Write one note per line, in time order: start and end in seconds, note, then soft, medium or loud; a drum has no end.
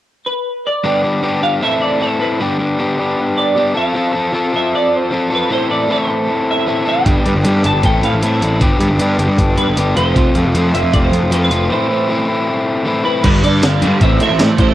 0.26 0.66 B4 medium
0.67 1.43 D5 medium
0.84 1.20 G2 medium
0.84 1.21 D3 medium
0.84 1.05 G3 medium
0.84 1.04 B3 medium
0.84 1.03 D4 medium
0.84 1.02 G4 medium
1.03 1.22 G3 soft
1.03 1.22 B3 medium
1.03 1.23 D4 medium
1.03 1.23 G4 medium
1.21 1.60 G2 medium
1.21 1.60 D3 medium
1.21 1.43 G3 medium
1.21 1.42 B3 medium
1.21 1.41 D4 medium
1.21 1.40 G4 medium
1.41 1.61 G3 soft
1.41 1.62 B3 medium
1.41 1.61 D4 medium
1.41 1.60 G4 medium
1.41 1.63 F5 medium
1.61 2.20 A2 medium
1.61 1.98 E3 medium
1.61 1.99 C4 medium
1.61 2.00 E4 medium
1.61 2.01 A4 medium
1.61 1.81 E5 medium
1.82 2.02 D5 medium
1.99 2.38 E3 medium
1.99 2.21 C4 medium
1.99 2.20 E4 medium
1.99 2.19 A4 medium
1.99 2.21 C5 medium
2.20 2.40 C4 medium
2.20 2.39 E4 medium
2.20 2.39 A4 medium
2.20 2.57 B4 medium
2.39 2.77 G2 medium
2.39 2.77 D3 medium
2.39 2.61 G3 medium
2.39 2.59 B3 medium
2.39 2.58 D4 medium
2.39 2.58 G4 medium
2.58 2.79 G3 soft
2.58 2.78 B3 medium
2.58 2.79 D4 medium
2.58 2.80 G4 medium
2.78 3.17 G2 medium
2.78 3.18 D3 medium
2.78 3.00 G3 medium
2.78 2.99 B3 medium
2.78 2.97 D4 medium
2.78 2.97 G4 medium
2.97 3.54 G3 medium
2.97 3.56 B3 medium
2.97 3.57 D4 medium
2.97 3.58 G4 medium
3.37 3.77 D5 medium
3.56 3.75 G3 medium
3.56 3.75 B3 medium
3.56 3.75 D4 medium
3.56 3.74 G4 medium
3.74 3.93 F3 medium
3.74 3.95 C4 medium
3.74 3.95 F4 medium
3.74 3.96 A4 medium
3.74 4.55 F5 medium
3.94 4.31 F3 medium
3.94 4.15 C4 medium
3.94 4.13 F4 medium
3.94 4.12 A4 loud
4.13 4.33 C4 soft
4.13 4.33 F4 medium
4.13 4.35 A4 medium
4.32 4.72 F3 medium
4.32 4.55 C4 medium
4.32 4.53 F4 medium
4.32 4.52 A4 medium
4.53 5.11 C4 medium
4.53 5.11 F4 medium
4.53 5.12 A4 medium
4.53 4.75 E5 medium
4.75 4.95 D5 medium
4.95 5.34 C5 medium
5.10 5.49 F3 medium
5.10 5.32 C4 medium
5.10 5.31 F4 medium
5.10 5.29 A4 medium
5.30 5.50 C4 medium
5.30 5.50 F4 medium
5.30 5.49 A4 medium
5.35 5.53 B4 medium
5.49 5.87 A2 medium
5.49 5.88 E3 loud
5.49 5.71 C4 medium
5.49 5.69 E4 medium
5.49 5.68 A4 medium
5.49 5.70 C5 medium
5.69 5.88 C4 medium
5.69 5.89 E4 medium
5.69 5.90 A4 medium
5.69 5.91 D5 medium
5.88 6.28 A2 medium
5.88 6.28 E3 medium
5.88 6.10 C4 medium
5.88 6.08 E4 medium
5.88 6.07 A4 medium
5.88 6.50 C5 medium
6.08 6.66 C4 soft
6.08 6.67 E4 medium
6.08 6.68 A4 medium
6.51 6.88 E5 medium
6.66 7.05 E3 medium
6.66 6.87 C4 medium
6.66 6.86 E4 medium
6.66 6.84 A4 medium
6.85 7.06 C4 medium
6.85 7.05 E4 medium
6.85 7.04 A4 medium
6.85 7.66 G5 medium
7.05 7.15 G1 medium
7.05 7.43 G2 medium
7.05 7.44 D3 medium
7.05 7.27 G3 medium
7.05 7.26 B3 loud
7.05 7.25 D4 medium
7.05 7.23 G4 medium
7.05 kick medium
7.05 closed hi-hat medium
7.25 7.35 G2 medium
7.25 7.44 G3 soft
7.25 7.45 B3 medium
7.25 7.45 D4 medium
7.25 7.46 G4 medium
7.25 closed hi-hat medium
7.36 7.44 G1 medium
7.44 7.82 G2 medium
7.44 7.63 G2 medium
7.44 7.82 D3 medium
7.44 7.65 G3 medium
7.44 7.64 B3 medium
7.44 7.63 D4 medium
7.44 7.62 G4 medium
7.44 closed hi-hat medium
7.63 7.73 G1 medium
7.63 7.83 G3 medium
7.63 7.83 B3 soft
7.63 7.83 D4 medium
7.63 7.82 G4 medium
7.63 7.85 A5 medium
7.63 closed hi-hat medium
7.75 7.83 G1 medium
7.82 8.01 A1 medium
7.82 8.41 A2 medium
7.82 8.20 E3 medium
7.82 8.21 C4 medium
7.82 8.22 E4 medium
7.82 8.23 A4 medium
7.82 8.05 G5 loud
7.82 kick medium
7.82 closed hi-hat medium
8.03 8.12 A2 medium
8.03 8.23 F5 medium
8.03 closed hi-hat medium
8.13 8.22 A1 medium
8.21 8.40 A2 medium
8.21 8.60 E3 medium
8.21 8.43 C4 medium
8.21 8.41 E4 medium
8.21 8.40 A4 medium
8.21 8.43 E5 medium
8.21 closed hi-hat medium
8.41 8.59 A1 medium
8.41 8.61 C4 medium
8.41 8.61 E4 medium
8.41 8.60 A4 medium
8.41 8.81 D5 medium
8.41 closed hi-hat medium
8.60 8.70 G1 medium
8.60 8.98 G2 medium
8.60 8.98 D3 medium
8.60 8.82 G3 medium
8.60 8.81 B3 medium
8.60 8.80 D4 medium
8.60 8.80 G4 loud
8.60 kick medium
8.60 closed hi-hat medium
8.80 8.89 G2 medium
8.80 9.00 G3 medium
8.80 9.00 B3 soft
8.80 9.00 D4 medium
8.80 9.02 G4 medium
8.80 closed hi-hat medium
8.89 8.98 G1 medium
8.99 9.17 G2 medium
8.99 9.38 G2 medium
8.99 9.39 D3 medium
8.99 9.22 G3 medium
8.99 9.20 B3 medium
8.99 9.19 D4 medium
8.99 9.19 G4 medium
8.99 closed hi-hat medium
9.19 9.27 G1 medium
9.19 9.76 G3 medium
9.19 9.77 B3 medium
9.19 9.78 D4 medium
9.19 9.79 G4 medium
9.19 closed hi-hat medium
9.28 9.37 G2 medium
9.38 9.56 G1 medium
9.38 kick medium
9.38 closed hi-hat medium
9.57 9.66 G2 medium
9.57 9.94 B4 medium
9.57 closed hi-hat medium
9.68 9.77 G1 medium
9.77 9.95 G1 medium
9.77 9.95 G3 medium
9.77 9.96 B3 medium
9.77 9.96 D4 medium
9.77 9.96 G4 medium
9.77 closed hi-hat medium
9.96 10.14 F1 medium
9.96 10.14 F2 medium
9.96 10.15 C3 medium
9.96 10.15 F3 medium
9.96 10.16 A3 medium
9.96 10.17 C4 medium
9.96 10.17 F4 medium
9.96 10.70 C5 medium
9.96 closed hi-hat medium
10.15 10.24 F1 medium
10.15 10.54 F2 medium
10.15 10.54 C3 medium
10.15 10.37 F3 medium
10.15 10.37 A3 medium
10.15 10.36 C4 medium
10.15 10.34 F4 medium
10.15 kick loud
10.15 closed hi-hat medium
10.35 10.44 F2 medium
10.35 10.55 F3 medium
10.35 10.56 A3 medium
10.35 10.57 C4 medium
10.35 10.57 F4 medium
10.35 closed hi-hat medium
10.45 10.54 F1 medium
10.54 10.72 F2 medium
10.54 10.93 F2 medium
10.54 10.94 C3 medium
10.54 10.75 F3 medium
10.54 10.75 A3 medium
10.54 10.74 C4 medium
10.54 10.72 F4 loud
10.54 closed hi-hat medium
10.73 10.82 F1 medium
10.73 11.30 F3 medium
10.73 11.31 A3 medium
10.73 11.32 C4 medium
10.73 11.32 F4 medium
10.73 10.93 E5 medium
10.73 closed hi-hat medium
10.83 10.92 F2 medium
10.93 11.11 F1 medium
10.93 10.98 D5 medium
10.93 kick medium
10.93 closed hi-hat medium
11.04 11.33 C5 medium
11.11 11.20 F2 medium
11.11 closed hi-hat medium
11.21 11.29 F1 medium
11.30 11.48 F2 medium
11.30 11.53 F3 medium
11.30 11.52 A3 medium
11.30 11.51 C4 medium
11.30 11.50 F4 medium
11.30 11.42 A4 medium
11.30 closed hi-hat medium
11.44 11.72 B4 medium
11.50 11.68 F1 medium
11.50 11.70 A3 medium
11.50 11.70 C4 medium
11.50 11.69 F4 medium
11.50 closed hi-hat medium
11.54 11.70 F3 medium
11.70 12.07 A2 medium
11.70 12.08 E3 medium
11.70 11.91 A3 medium
11.70 11.90 C4 medium
11.70 11.88 E4 medium
11.70 12.83 C5 medium
11.89 12.08 A3 medium
11.89 12.09 C4 medium
11.89 12.10 E4 medium
12.08 12.47 A2 medium
12.08 12.48 E3 medium
12.08 12.29 A3 medium
12.08 12.29 C4 medium
12.08 12.27 E4 medium
12.28 12.85 A3 medium
12.28 12.86 C4 medium
12.28 12.87 E4 medium
12.85 13.23 E3 medium
12.85 13.06 A3 medium
12.85 13.05 C4 medium
12.85 13.03 E4 medium
13.04 13.24 A3 medium
13.04 13.24 C4 medium
13.04 13.23 E4 medium
13.04 13.23 B4 medium
13.24 13.42 G1 medium
13.24 13.42 G2 medium
13.24 13.42 D3 medium
13.24 13.43 G3 medium
13.24 13.44 B4 medium
13.24 kick loud
13.24 closed hi-hat medium
13.24 crash medium
13.43 13.60 G2 medium
13.43 13.61 G2 medium
13.43 13.61 D3 medium
13.43 13.64 D5 medium
13.43 closed hi-hat medium
13.62 13.83 G1 medium
13.62 13.80 G2 medium
13.62 13.80 D3 medium
13.62 14.02 F5 medium
13.62 snare loud
13.62 closed hi-hat medium
13.62 tambourine loud
13.82 13.91 G2 medium
13.82 14.00 G2 medium
13.82 14.00 D3 medium
13.82 14.00 G3 medium
13.82 closed hi-hat medium
14.01 14.18 A1 medium
14.01 14.19 A2 medium
14.01 14.20 E3 medium
14.01 14.20 C4 medium
14.01 14.21 E5 medium
14.01 kick medium
14.01 closed hi-hat medium
14.20 14.38 A2 medium
14.20 14.30 A2 medium
14.20 14.38 E3 medium
14.20 14.74 C4 medium
14.20 14.42 E5 medium
14.20 closed hi-hat medium
14.30 14.41 A1 medium
14.39 14.57 A2 medium
14.39 14.48 A2 medium
14.39 14.57 E3 medium
14.39 14.74 A3 medium
14.39 14.60 D5 medium
14.39 snare loud
14.39 closed hi-hat medium
14.39 tambourine loud
14.58 14.74 A1 medium
14.58 14.74 A2 medium
14.58 14.74 E3 medium
14.58 14.74 E4 medium
14.58 14.74 C5 medium
14.58 kick medium
14.58 closed hi-hat medium